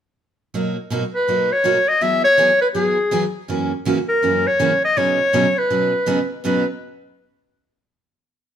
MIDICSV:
0, 0, Header, 1, 3, 480
1, 0, Start_track
1, 0, Key_signature, 5, "major"
1, 0, Tempo, 369004
1, 696, Time_signature, 4, 2, 24, 8
1, 11124, End_track
2, 0, Start_track
2, 0, Title_t, "Clarinet"
2, 0, Program_c, 0, 71
2, 1497, Note_on_c, 0, 71, 83
2, 1980, Note_on_c, 0, 73, 97
2, 2000, Note_off_c, 0, 71, 0
2, 2452, Note_on_c, 0, 75, 89
2, 2472, Note_off_c, 0, 73, 0
2, 2629, Note_on_c, 0, 76, 101
2, 2648, Note_off_c, 0, 75, 0
2, 2911, Note_off_c, 0, 76, 0
2, 2918, Note_on_c, 0, 73, 105
2, 3370, Note_off_c, 0, 73, 0
2, 3401, Note_on_c, 0, 71, 79
2, 3480, Note_off_c, 0, 71, 0
2, 3574, Note_on_c, 0, 68, 76
2, 4314, Note_off_c, 0, 68, 0
2, 5314, Note_on_c, 0, 70, 87
2, 5814, Note_on_c, 0, 73, 102
2, 5833, Note_off_c, 0, 70, 0
2, 6289, Note_off_c, 0, 73, 0
2, 6304, Note_on_c, 0, 75, 95
2, 6476, Note_on_c, 0, 73, 94
2, 6495, Note_off_c, 0, 75, 0
2, 7261, Note_on_c, 0, 71, 78
2, 7280, Note_off_c, 0, 73, 0
2, 8210, Note_off_c, 0, 71, 0
2, 8376, Note_on_c, 0, 71, 75
2, 8661, Note_off_c, 0, 71, 0
2, 11124, End_track
3, 0, Start_track
3, 0, Title_t, "Steel-string acoustic guitar"
3, 0, Program_c, 1, 25
3, 702, Note_on_c, 1, 47, 55
3, 703, Note_on_c, 1, 54, 59
3, 709, Note_on_c, 1, 63, 52
3, 714, Note_on_c, 1, 58, 60
3, 720, Note_on_c, 1, 66, 59
3, 983, Note_off_c, 1, 47, 0
3, 984, Note_off_c, 1, 54, 0
3, 987, Note_off_c, 1, 63, 0
3, 989, Note_off_c, 1, 58, 0
3, 992, Note_off_c, 1, 66, 0
3, 1177, Note_on_c, 1, 47, 70
3, 1189, Note_on_c, 1, 54, 79
3, 1190, Note_on_c, 1, 58, 75
3, 1193, Note_on_c, 1, 63, 70
3, 1200, Note_on_c, 1, 66, 83
3, 1328, Note_off_c, 1, 47, 0
3, 1334, Note_off_c, 1, 54, 0
3, 1334, Note_off_c, 1, 58, 0
3, 1336, Note_off_c, 1, 63, 0
3, 1339, Note_off_c, 1, 66, 0
3, 1660, Note_on_c, 1, 47, 47
3, 1672, Note_on_c, 1, 54, 54
3, 1673, Note_on_c, 1, 63, 58
3, 1675, Note_on_c, 1, 58, 49
3, 1677, Note_on_c, 1, 66, 50
3, 1944, Note_off_c, 1, 47, 0
3, 1949, Note_off_c, 1, 54, 0
3, 1950, Note_off_c, 1, 63, 0
3, 1951, Note_off_c, 1, 58, 0
3, 1952, Note_off_c, 1, 66, 0
3, 2131, Note_on_c, 1, 47, 74
3, 2138, Note_on_c, 1, 54, 76
3, 2146, Note_on_c, 1, 58, 76
3, 2149, Note_on_c, 1, 63, 72
3, 2153, Note_on_c, 1, 66, 86
3, 2286, Note_off_c, 1, 47, 0
3, 2290, Note_off_c, 1, 54, 0
3, 2293, Note_off_c, 1, 58, 0
3, 2295, Note_off_c, 1, 63, 0
3, 2297, Note_off_c, 1, 66, 0
3, 2614, Note_on_c, 1, 52, 55
3, 2619, Note_on_c, 1, 54, 63
3, 2624, Note_on_c, 1, 59, 59
3, 2628, Note_on_c, 1, 64, 60
3, 2634, Note_on_c, 1, 68, 59
3, 2901, Note_off_c, 1, 52, 0
3, 2903, Note_off_c, 1, 54, 0
3, 2906, Note_off_c, 1, 59, 0
3, 2908, Note_off_c, 1, 64, 0
3, 2911, Note_off_c, 1, 68, 0
3, 3089, Note_on_c, 1, 52, 70
3, 3097, Note_on_c, 1, 59, 81
3, 3101, Note_on_c, 1, 54, 75
3, 3106, Note_on_c, 1, 64, 82
3, 3107, Note_on_c, 1, 68, 83
3, 3245, Note_off_c, 1, 52, 0
3, 3249, Note_off_c, 1, 59, 0
3, 3251, Note_off_c, 1, 54, 0
3, 3253, Note_off_c, 1, 64, 0
3, 3254, Note_off_c, 1, 68, 0
3, 3570, Note_on_c, 1, 52, 53
3, 3574, Note_on_c, 1, 59, 51
3, 3575, Note_on_c, 1, 54, 60
3, 3584, Note_on_c, 1, 64, 55
3, 3588, Note_on_c, 1, 68, 59
3, 3859, Note_off_c, 1, 52, 0
3, 3861, Note_off_c, 1, 54, 0
3, 3861, Note_off_c, 1, 59, 0
3, 3866, Note_off_c, 1, 64, 0
3, 3868, Note_off_c, 1, 68, 0
3, 4049, Note_on_c, 1, 52, 70
3, 4055, Note_on_c, 1, 54, 73
3, 4059, Note_on_c, 1, 59, 77
3, 4063, Note_on_c, 1, 64, 84
3, 4069, Note_on_c, 1, 68, 86
3, 4205, Note_off_c, 1, 52, 0
3, 4208, Note_off_c, 1, 54, 0
3, 4210, Note_off_c, 1, 59, 0
3, 4212, Note_off_c, 1, 64, 0
3, 4215, Note_off_c, 1, 68, 0
3, 4530, Note_on_c, 1, 42, 52
3, 4535, Note_on_c, 1, 49, 54
3, 4546, Note_on_c, 1, 52, 57
3, 4547, Note_on_c, 1, 58, 58
3, 4548, Note_on_c, 1, 66, 56
3, 4550, Note_on_c, 1, 61, 58
3, 4818, Note_off_c, 1, 42, 0
3, 4821, Note_off_c, 1, 49, 0
3, 4826, Note_off_c, 1, 52, 0
3, 4827, Note_off_c, 1, 58, 0
3, 4827, Note_off_c, 1, 66, 0
3, 4828, Note_off_c, 1, 61, 0
3, 5014, Note_on_c, 1, 42, 75
3, 5022, Note_on_c, 1, 49, 65
3, 5023, Note_on_c, 1, 52, 78
3, 5026, Note_on_c, 1, 58, 76
3, 5028, Note_on_c, 1, 61, 78
3, 5033, Note_on_c, 1, 66, 79
3, 5166, Note_off_c, 1, 42, 0
3, 5171, Note_off_c, 1, 49, 0
3, 5171, Note_off_c, 1, 52, 0
3, 5173, Note_off_c, 1, 58, 0
3, 5174, Note_off_c, 1, 61, 0
3, 5176, Note_off_c, 1, 66, 0
3, 5495, Note_on_c, 1, 42, 52
3, 5501, Note_on_c, 1, 49, 52
3, 5505, Note_on_c, 1, 52, 52
3, 5507, Note_on_c, 1, 58, 48
3, 5509, Note_on_c, 1, 61, 58
3, 5514, Note_on_c, 1, 66, 51
3, 5780, Note_off_c, 1, 42, 0
3, 5783, Note_off_c, 1, 49, 0
3, 5785, Note_off_c, 1, 52, 0
3, 5786, Note_off_c, 1, 58, 0
3, 5786, Note_off_c, 1, 61, 0
3, 5789, Note_off_c, 1, 66, 0
3, 5975, Note_on_c, 1, 42, 74
3, 5980, Note_on_c, 1, 49, 81
3, 5980, Note_on_c, 1, 52, 80
3, 5984, Note_on_c, 1, 58, 75
3, 5987, Note_on_c, 1, 61, 79
3, 5994, Note_on_c, 1, 66, 82
3, 6126, Note_off_c, 1, 42, 0
3, 6129, Note_off_c, 1, 49, 0
3, 6129, Note_off_c, 1, 52, 0
3, 6130, Note_off_c, 1, 58, 0
3, 6132, Note_off_c, 1, 61, 0
3, 6136, Note_off_c, 1, 66, 0
3, 6459, Note_on_c, 1, 47, 58
3, 6463, Note_on_c, 1, 49, 57
3, 6464, Note_on_c, 1, 54, 52
3, 6471, Note_on_c, 1, 63, 61
3, 6476, Note_on_c, 1, 59, 59
3, 6476, Note_on_c, 1, 71, 58
3, 6741, Note_off_c, 1, 47, 0
3, 6742, Note_off_c, 1, 49, 0
3, 6743, Note_off_c, 1, 54, 0
3, 6746, Note_off_c, 1, 63, 0
3, 6749, Note_off_c, 1, 59, 0
3, 6749, Note_off_c, 1, 71, 0
3, 6934, Note_on_c, 1, 47, 75
3, 6939, Note_on_c, 1, 49, 72
3, 6945, Note_on_c, 1, 59, 78
3, 6947, Note_on_c, 1, 54, 83
3, 6947, Note_on_c, 1, 63, 76
3, 6951, Note_on_c, 1, 71, 72
3, 7084, Note_off_c, 1, 47, 0
3, 7087, Note_off_c, 1, 49, 0
3, 7090, Note_off_c, 1, 59, 0
3, 7091, Note_off_c, 1, 54, 0
3, 7091, Note_off_c, 1, 63, 0
3, 7093, Note_off_c, 1, 71, 0
3, 7418, Note_on_c, 1, 47, 46
3, 7419, Note_on_c, 1, 49, 50
3, 7420, Note_on_c, 1, 54, 51
3, 7425, Note_on_c, 1, 59, 44
3, 7425, Note_on_c, 1, 63, 53
3, 7433, Note_on_c, 1, 71, 53
3, 7699, Note_off_c, 1, 47, 0
3, 7700, Note_off_c, 1, 49, 0
3, 7700, Note_off_c, 1, 54, 0
3, 7702, Note_off_c, 1, 59, 0
3, 7703, Note_off_c, 1, 63, 0
3, 7706, Note_off_c, 1, 71, 0
3, 7885, Note_on_c, 1, 47, 75
3, 7892, Note_on_c, 1, 54, 83
3, 7894, Note_on_c, 1, 49, 75
3, 7901, Note_on_c, 1, 59, 84
3, 7901, Note_on_c, 1, 63, 72
3, 7903, Note_on_c, 1, 71, 73
3, 8039, Note_off_c, 1, 47, 0
3, 8042, Note_off_c, 1, 54, 0
3, 8043, Note_off_c, 1, 49, 0
3, 8047, Note_off_c, 1, 59, 0
3, 8047, Note_off_c, 1, 63, 0
3, 8048, Note_off_c, 1, 71, 0
3, 8374, Note_on_c, 1, 47, 67
3, 8385, Note_on_c, 1, 49, 75
3, 8391, Note_on_c, 1, 54, 61
3, 8393, Note_on_c, 1, 59, 69
3, 8395, Note_on_c, 1, 63, 73
3, 8406, Note_on_c, 1, 71, 75
3, 8620, Note_off_c, 1, 47, 0
3, 8625, Note_off_c, 1, 49, 0
3, 8628, Note_off_c, 1, 54, 0
3, 8629, Note_off_c, 1, 59, 0
3, 8630, Note_off_c, 1, 63, 0
3, 8636, Note_off_c, 1, 71, 0
3, 11124, End_track
0, 0, End_of_file